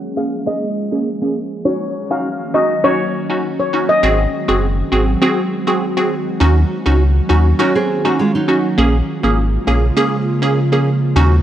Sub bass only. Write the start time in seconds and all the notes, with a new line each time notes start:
4.03 G#1
4.48 F#1
4.92 G#1
6.41 D#2
6.86 C#2
7.30 D#2
8.78 A#1
9.24 G#1
9.67 A#1
11.16 D#2